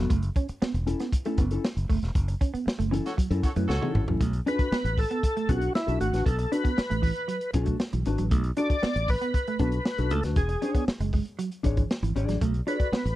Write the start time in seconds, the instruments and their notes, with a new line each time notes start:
Already playing: clean electric guitar B3 F#4
0.10 fingered electric bass F#1, clean electric guitar A3, kick, closed hi-hat
0.22 closed hi-hat
0.36 clean electric guitar C#4, kick, closed hi-hat
0.49 muted fingered electric bass stroke, muted clean electric guitar stroke, closed hi-hat
0.62 clean electric guitar B3, muted fingered electric bass stroke, snare
0.74 fingered electric bass E1, muted clean electric guitar stroke, closed hi-hat
0.87 clean electric guitar C#4 E4 A4, closed hi-hat
1.00 clean electric guitar B3, snare, closed hi-hat
1.12 muted clean electric guitar stroke, kick, closed hi-hat
1.25 clean electric guitar A3 C#4 E4 A4, closed hi-hat
1.38 fingered electric bass F#1, clean electric guitar B3, kick, closed hi-hat
1.51 clean electric guitar C#4 E4 A4, closed hi-hat
1.65 snare
1.77 fingered electric bass F#1, closed hi-hat
1.89 fingered electric bass F#1, clean electric guitar A3, kick, open hi-hat
2.03 fingered electric bass E1, snare, closed hi-hat
2.15 fingered electric bass F#1, kick, closed hi-hat
2.28 muted clean electric guitar stroke, closed hi-hat
2.41 clean electric guitar C#4, kick, closed hi-hat
2.54 clean electric guitar B3, muted fingered electric bass stroke, closed hi-hat
2.66 muted clean electric guitar stroke, muted fingered electric bass stroke, snare
2.79 fingered electric bass F#1, clean electric guitar A3, closed hi-hat
2.91 clean electric guitar E3 C#4 E4 A4, closed hi-hat
3.06 horn section F#4 A4 C#5, snare, closed hi-hat
3.17 clean electric guitar F#3, kick, closed hi-hat
3.31 fingered electric bass F#2, clean electric guitar C#4 E4 A4, closed hi-hat
3.43 horn section F#4 A4 C#5, muted clean electric guitar stroke, kick, closed hi-hat
3.56 fingered electric bass F#2, clean electric guitar A3 C#4 E4 B4, closed hi-hat
3.68 fingered electric bass C#2, horn section F#4 A4 C#5, snare
3.82 clean electric guitar E3 C#4 E4 A4, high tom
3.95 fingered electric bass G#1, muted clean electric guitar stroke, mid tom
4.07 fingered electric bass A1, clean electric guitar F#3 C#4 E4 A4, floor tom
4.20 fingered electric bass B1, clean electric guitar A3, kick, closed hi-hat
4.33 closed hi-hat
4.46 clean electric guitar D4 F#4 A4, tonewheel organ B4, closed hi-hat
4.59 muted fingered electric bass stroke, muted clean electric guitar stroke, kick, closed hi-hat
4.72 clean electric guitar B3, muted fingered electric bass stroke, snare
4.84 fingered electric bass A1, muted clean electric guitar stroke, closed hi-hat
4.98 tonewheel organ A4, kick, open hi-hat
5.11 clean electric guitar B3, closed hi-hat
5.23 muted clean electric guitar stroke, kick, closed hi-hat
5.37 clean electric guitar A3, closed hi-hat
5.49 fingered electric bass B1, clean electric guitar B3 D4 F#4 A4, tonewheel organ F#4, kick, closed hi-hat
5.61 closed hi-hat
5.75 tonewheel organ E4, snare
5.87 fingered electric bass B1, clean electric guitar D4 F#4 A4, closed hi-hat
6.00 fingered electric bass G#1, clean electric guitar A3, tonewheel organ F#4, closed hi-hat
6.13 fingered electric bass A1, clean electric guitar D4 F#4 B4, snare, closed hi-hat
6.26 fingered electric bass B1, tonewheel organ A4, kick, closed hi-hat
6.39 muted clean electric guitar stroke, closed hi-hat
6.52 clean electric guitar D4 F#4 A4, tonewheel organ B4, closed hi-hat
6.64 clean electric guitar B3, muted fingered electric bass stroke, kick, closed hi-hat
6.77 muted clean electric guitar stroke, muted fingered electric bass stroke, snare
6.90 fingered electric bass A1, clean electric guitar A3, closed hi-hat
7.02 clean electric guitar E3, kick, open hi-hat
7.16 closed hi-hat
7.28 clean electric guitar F#3, closed hi-hat
7.41 closed hi-hat
7.53 fingered electric bass B1, clean electric guitar D4 F#4 A4, muted clean electric guitar stroke, kick, closed hi-hat
7.66 clean electric guitar A3, kick, closed hi-hat
7.80 snare
7.93 fingered electric bass B1, clean electric guitar E3, closed hi-hat
8.05 fingered electric bass G#1, clean electric guitar D4 F#4 B4, muted clean electric guitar stroke, closed hi-hat
8.18 fingered electric bass A1, clean electric guitar F#3, closed hi-hat
8.31 fingered electric bass B1, clean electric guitar A3, kick, closed hi-hat
8.44 closed hi-hat
8.57 clean electric guitar D4 F#4 A4, tonewheel organ D5, closed hi-hat
8.70 muted fingered electric bass stroke, muted clean electric guitar stroke, kick, closed hi-hat
8.83 clean electric guitar B3, muted fingered electric bass stroke, snare
8.96 fingered electric bass A1, muted clean electric guitar stroke, closed hi-hat
9.08 tonewheel organ B4, kick, open hi-hat
9.21 clean electric guitar B3, closed hi-hat
9.34 muted clean electric guitar stroke, kick, closed hi-hat
9.47 clean electric guitar A3, closed hi-hat
9.59 fingered electric bass B1, clean electric guitar B3 D4 F#4 A4, tonewheel organ B4, kick, closed hi-hat
9.72 closed hi-hat
9.85 snare
9.98 fingered electric bass B1, clean electric guitar D4 F#4 A4, closed hi-hat
10.10 fingered electric bass C#2, clean electric guitar A3, tonewheel organ A4, closed hi-hat
10.23 fingered electric bass D2, clean electric guitar D4 F#4 B4, snare, closed hi-hat
10.36 fingered electric bass E1, tonewheel organ G#4, kick, closed hi-hat
10.49 muted clean electric guitar stroke, closed hi-hat
10.62 clean electric guitar D4 G#4 C#5, closed hi-hat
10.74 clean electric guitar B3, muted fingered electric bass stroke, kick, closed hi-hat
10.88 muted fingered electric bass stroke, muted clean electric guitar stroke, snare
11.00 fingered electric bass F#1, clean electric guitar G#3, closed hi-hat
11.13 clean electric guitar G#3, kick, open hi-hat
11.25 closed hi-hat
11.39 clean electric guitar F#3, closed hi-hat
11.52 closed hi-hat
11.63 fingered electric bass G#1, clean electric guitar D4 G#4 C#5, muted clean electric guitar stroke, kick, closed hi-hat
11.77 clean electric guitar E3, kick, closed hi-hat
11.91 snare
12.03 fingered electric bass G#1, clean electric guitar E3, closed hi-hat
12.16 fingered electric bass G#1, clean electric guitar D4 G#4 D5, muted clean electric guitar stroke, closed hi-hat
12.28 fingered electric bass A1, clean electric guitar F#3, snare, closed hi-hat
12.41 fingered electric bass B1, clean electric guitar A3, kick, closed hi-hat
12.54 closed hi-hat
12.67 clean electric guitar D4 F#4 A4 D5, tonewheel organ B4, closed hi-hat
12.80 muted fingered electric bass stroke, muted clean electric guitar stroke, kick, closed hi-hat
12.92 clean electric guitar B3, muted fingered electric bass stroke, snare
13.05 fingered electric bass A1, muted clean electric guitar stroke, closed hi-hat